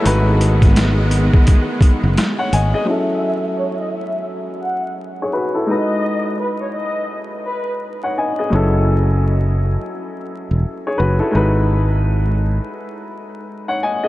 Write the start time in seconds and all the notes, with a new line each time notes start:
Already playing: E4 F#4 A4
0.02 G#1 D#3 G#3 B3 D#4 F#4, closed hi-hat
0.07 B4
0.41 closed hi-hat
0.62 kick, snare, closed hi-hat
0.76 snare, closed hi-hat
1.11 closed hi-hat
1.33 kick
1.47 kick, closed hi-hat
1.81 kick, closed hi-hat
2.04 F#1
2.18 snare, closed hi-hat
2.39 C#5 F#5
2.53 G#1 D#5 G#5, closed hi-hat
2.74 G#4 D#5
2.85 F#3 C#4 E4 E5
2.90 A4
3.58 C#5
3.79 D#5
3.93 E5
4.63 F#5
5.22 G#4 C#5
5.33 F#4 B4
5.54 E4 A4
5.66 G#3 D#4 F#4 D#5
5.71 B4
6.41 B4
6.62 C#5
6.76 D#5
7.46 B4
8.03 C#5 F#5
8.18 D#5 G#5
8.39 G#4 D#5
8.50 F#1 F#3 C#4 E4
8.55 A4
10.51 E1
10.87 G#4 C#5
10.98 F#1 F#4 B4
11.19 E4 A4
11.31 G#1 G#3 D#4 F#4
11.36 B4
13.68 C#5 F#5
13.83 D#5 G#5
14.03 G#4 D#5